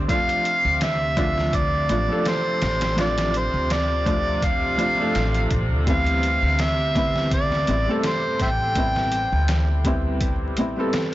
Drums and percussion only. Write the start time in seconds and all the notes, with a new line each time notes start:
0.09 kick, closed hi-hat
0.29 closed hi-hat
0.45 closed hi-hat
0.81 snare, closed hi-hat
1.17 kick, closed hi-hat
1.38 snare
1.53 kick, closed hi-hat
1.89 closed hi-hat
2.25 snare, closed hi-hat
2.62 snare, closed hi-hat
2.81 snare, closed hi-hat
2.98 snare, closed hi-hat
3.18 snare, closed hi-hat
3.34 closed hi-hat
3.70 snare, closed hi-hat
4.06 kick, closed hi-hat
4.42 kick, closed hi-hat
4.79 closed hi-hat
5.15 snare, closed hi-hat
5.34 closed hi-hat
5.50 kick, closed hi-hat
5.87 kick, closed hi-hat
6.06 closed hi-hat
6.23 closed hi-hat
6.59 snare, closed hi-hat
6.95 kick, closed hi-hat
7.16 snare
7.31 kick, closed hi-hat
7.52 snare
7.67 closed hi-hat
8.04 snare, closed hi-hat
8.40 kick, closed hi-hat
8.75 kick, closed hi-hat
8.96 snare
9.12 closed hi-hat
9.48 snare, closed hi-hat
9.85 kick, closed hi-hat
10.21 kick, closed hi-hat
10.57 closed hi-hat
10.93 snare, closed hi-hat